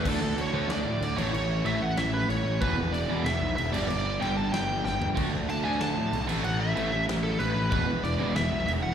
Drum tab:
CC |x-x-x-xx|x-x-x-x-|x-x-x-xx|x-x-x---|
SD |----o---|----o---|----o---|----o-o-|
FT |--------|--------|--------|-------o|
BD |o-------|--------|o-------|--------|

CC |x-x-x-xx|x-x-x-x-|x-x-x-x-|
SD |----o---|----o---|----o---|
FT |--------|--------|--------|
BD |o-------|--------|o-------|